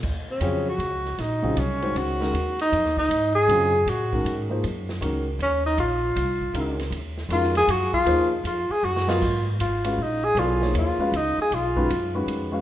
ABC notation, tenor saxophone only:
X:1
M:3/4
L:1/8
Q:"Swing" 1/4=157
K:Ebdor
V:1 name="Tenor saxophone"
z D2 G3 | E2 D2 G2- | G E2 E2 A- | A2 G3 z |
z4 D E | F6 | z2 F A G F- | F z F A G F- |
[K:G#dor] =F z E2 D G | E2 E2 D G | E3 z3 |]